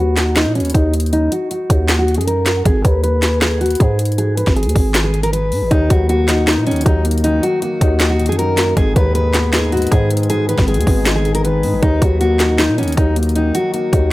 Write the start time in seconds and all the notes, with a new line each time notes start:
Already playing: D#2
0.00 F#4
0.17 snare, clap, closed hi-hat
0.36 D#4, snare, clap
0.46 A#2
0.55 C#4, closed hi-hat
0.60 D#2, closed hi-hat
0.65 closed hi-hat
0.70 closed hi-hat
0.74 D#2 D#4, kick, closed hi-hat
0.94 closed hi-hat
1.00 closed hi-hat
1.06 closed hi-hat
1.13 D#4, closed hi-hat
1.32 F#4, closed hi-hat
1.51 F#4, closed hi-hat
1.70 D#2, kick, closed hi-hat
1.89 snare, clap, closed hi-hat
1.99 F#4
2.08 closed hi-hat
2.14 F#2 G#4, closed hi-hat
2.21 closed hi-hat
2.27 A#4, closed hi-hat
2.46 snare, clap, closed hi-hat
2.65 G#1 G#4, kick, closed hi-hat
2.84 D#2 B4, kick, closed hi-hat
3.03 B4, closed hi-hat
3.22 snare, clap, closed hi-hat
3.42 G#4, snare, clap
3.61 F#4, closed hi-hat
3.66 closed hi-hat
3.71 closed hi-hat
3.75 closed hi-hat
3.80 G#2 G#4, kick, closed hi-hat
3.99 closed hi-hat
4.05 closed hi-hat
4.12 closed hi-hat
4.18 G#4, closed hi-hat
4.37 B4, closed hi-hat
4.47 G#1, kick, snare
4.56 G#4, closed hi-hat
4.63 D#2, closed hi-hat
4.69 closed hi-hat
4.76 G#1, kick, open hi-hat
4.95 snare, clap, closed hi-hat
5.04 G#4
5.14 closed hi-hat
5.23 A#4, closed hi-hat
5.33 B4, closed hi-hat
5.52 G#2, open hi-hat
5.62 G#1
5.71 D#2 D#3 D#4, kick, closed hi-hat
5.90 D#2 F#3 F#4, kick, closed hi-hat
6.09 A#3 F#4, closed hi-hat
6.28 D#4, snare, clap, closed hi-hat
6.47 D#4 D#5, snare, clap
6.57 A#2
6.67 D#3 C#4, closed hi-hat
6.71 D#2, closed hi-hat
6.76 closed hi-hat
6.81 closed hi-hat
6.86 D#2 F#3 D#4, kick, closed hi-hat
7.05 A#3, closed hi-hat
7.11 closed hi-hat
7.18 closed hi-hat
7.24 D#3 D#4, closed hi-hat
7.43 F#3 F#4, closed hi-hat
7.62 A#3 F#4, closed hi-hat
7.81 D#2 D#4, kick, closed hi-hat
8.00 D#5, snare, clap, closed hi-hat
8.10 F#4
8.19 D#3, closed hi-hat
8.26 F#2 G#4, closed hi-hat
8.32 closed hi-hat
8.39 F#3 A#4, closed hi-hat
8.58 A#3, snare, clap, closed hi-hat
8.76 G#1 G#2 G#4, kick, closed hi-hat
8.96 D#2 D#3 B4, kick, closed hi-hat
9.15 G#3 B4, closed hi-hat
9.34 B3, snare, clap, closed hi-hat
9.53 D#4 G#4, snare, clap
9.72 G#2 F#4, closed hi-hat
9.77 closed hi-hat
9.82 closed hi-hat
9.87 closed hi-hat
9.92 G#2 D#3 G#4, kick, closed hi-hat
10.11 G#3, closed hi-hat
10.17 closed hi-hat
10.23 closed hi-hat
10.30 G#2 G#4, closed hi-hat
10.49 D#3 B4, closed hi-hat
10.58 G#1, kick, snare
10.68 G#3 G#4, closed hi-hat
10.74 D#2, closed hi-hat
10.81 closed hi-hat
10.87 G#1 B3, kick, open hi-hat
11.06 D#4, snare, clap, closed hi-hat
11.16 G#4
11.25 G#2, closed hi-hat
11.35 A#4, closed hi-hat
11.44 D#3 B4, closed hi-hat
11.63 G#2 G#3, open hi-hat
11.73 G#1
11.83 D#2 D#3 D#4, kick, closed hi-hat
12.01 D#2 F#3 F#4, kick, closed hi-hat
12.21 A#3 F#4, closed hi-hat
12.40 D#4, snare, clap, closed hi-hat
12.59 D#4 D#5, snare, clap
12.69 A#2
12.78 D#3 C#4, closed hi-hat
12.83 D#2, closed hi-hat
12.88 closed hi-hat
12.92 closed hi-hat
12.97 D#2 F#3 D#4, kick, closed hi-hat
13.16 A#3, closed hi-hat
13.23 closed hi-hat
13.29 closed hi-hat
13.35 D#3 D#4, closed hi-hat
13.55 F#3 F#4, closed hi-hat
13.74 A#3 F#4, closed hi-hat
13.93 D#2 D#4, kick, closed hi-hat